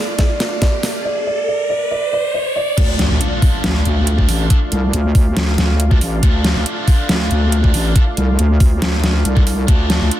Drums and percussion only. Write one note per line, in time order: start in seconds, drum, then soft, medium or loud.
0.19 kick loud
0.19 snare medium
0.19 closed hi-hat medium
0.40 snare medium
0.40 closed hi-hat medium
0.62 kick loud
0.62 snare medium
0.62 closed hi-hat medium
0.83 snare medium
0.83 open hi-hat loud
2.78 kick loud
2.78 closed hi-hat medium
2.78 crash loud
2.99 snare medium
2.99 closed hi-hat medium
3.21 closed hi-hat medium
3.42 kick loud
3.42 open hi-hat medium
3.64 snare loud
3.64 closed hi-hat medium
3.85 closed hi-hat medium
4.07 closed hi-hat medium
4.19 kick medium
4.29 open hi-hat loud
4.50 kick loud
4.50 closed hi-hat medium
4.72 closed hi-hat medium
4.93 closed hi-hat medium
5.15 kick loud
5.15 open hi-hat medium
5.37 snare loud
5.37 closed hi-hat medium
5.58 snare medium
5.58 closed hi-hat medium
5.80 closed hi-hat medium
5.91 kick loud
6.01 open hi-hat medium
6.23 kick loud
6.23 closed hi-hat medium
6.44 snare medium
6.44 closed hi-hat medium
6.66 closed hi-hat medium
6.88 kick loud
6.88 open hi-hat medium
7.09 snare loud
7.09 closed hi-hat medium
7.31 closed hi-hat medium
7.52 closed hi-hat medium
7.64 kick medium
7.74 open hi-hat medium
7.96 kick loud
7.96 closed hi-hat medium
8.17 closed hi-hat medium
8.39 closed hi-hat medium
8.60 kick loud
8.60 open hi-hat medium
8.82 snare loud
8.82 closed hi-hat medium
9.04 snare medium
9.04 closed hi-hat medium
9.25 closed hi-hat medium
9.37 kick loud
9.47 open hi-hat medium
9.68 kick loud
9.68 closed hi-hat medium
9.90 snare medium
9.90 closed hi-hat medium
10.11 closed hi-hat medium